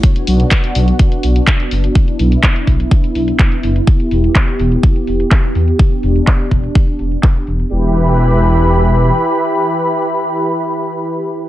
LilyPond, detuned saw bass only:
\new Staff \with { instrumentName = "Detuned saw bass" } { \clef bass \time 4/4 \key e \minor \tempo 4 = 125 r8 b,,8 r8 b,,8 r8 b,,8 r8 fis,,8 | r8 b,,8 r8 b,,8 r8 b,,8 r8 fis,,8 | r8 e,,8 r8 e,,8 r8 e,,8 r8 e,8 | r8 e,,8 r8 e,,8 r8 e,,8 r8 e,,8 |
e,,2. r4 | r1 | }